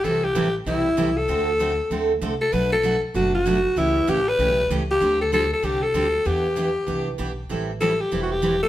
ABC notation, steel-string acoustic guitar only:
X:1
M:4/4
L:1/8
Q:"Swing" 1/4=193
K:Ador
V:1 name="Steel-string acoustic guitar"
[C,E,G,CEA] z [C,E,G,CEA] z [C,E,G,CEA] z [C,E,G,CEA] z | [D,A,CFA] z [D,A,CFA] z [D,A,CFA] z [D,A,CFA] z | [B,,F,A,DF] z [B,,F,A,DF] z [B,,F,A,DF] z [B,,F,A,DF] z | [^C,E,A,^CG] z [C,E,A,CG] z [C,E,A,CG] z [C,E,A,CG] z |
[D,G,CDG] z [D,G,CDG] z [D,G,CDG] z [D,G,CDG] z | [E,B,DG] z [E,B,DG] z [E,B,DG] z [E,B,DG] z | [E,G,CEA] z [E,G,CEA] z [E,G,CEA] z [E,G,CEA] z |]